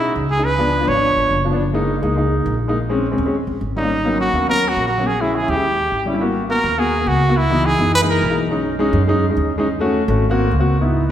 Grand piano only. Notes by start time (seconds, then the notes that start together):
Already playing: G#3 C#4 D#4
0.37 G#3 C#4 D#4
0.58 F3 B3 D4
0.80 F3 B3 D4
0.94 F3 B3 D4
1.45 F3 B3 D4
1.52 F3 B3 D4
1.73 G#3 A#3 D#4
2.02 G#3 A#3 D#4
2.17 G#3 A#3 D#4
2.68 G#3 A#3 D#4
2.89 G#3 C4 C#4
3.11 G#3 C4 C#4
3.26 G#3 C4 C#4
3.76 G3 A#3 C#4
3.83 G3 A#3 C#4
4.05 F#3 A#3 B3 C#4
4.33 F#3 A#3 B3 C#4
4.48 F#3 A#3 B3 C#4
4.98 F#3 A#3 B3 C#4
5.20 G#3 C#4 E4
5.41 G#3 C#4 E4
5.55 G#3 C#4 E4
6.06 G3 C#4 E4
6.13 G3 C#4 E4
6.20 A#3 B3 F#4
6.49 A#3 B3 F#4
6.77 A#3 B3 F#4
7.00 A#3 B3 F#4
7.28 A#3 B3 F#4
7.50 E3 B3 D#4
7.79 E3 B3 D#4
8.01 E3 G#3 A#3 D#4
8.29 E3 G#3 A#3 D#4
8.50 G#3 C#4 D#4
8.79 G#3 C#4 D#4
9.08 G#3 C#4 D#4
9.30 G#3 C#4 D#4
9.58 G#3 C#4 D#4
9.80 A3 C#4 F#4
10.08 A3 C#4 F#4
10.30 A#3 C4 F#4
10.59 A#3 C4 F#4
10.81 B3 D#4 E4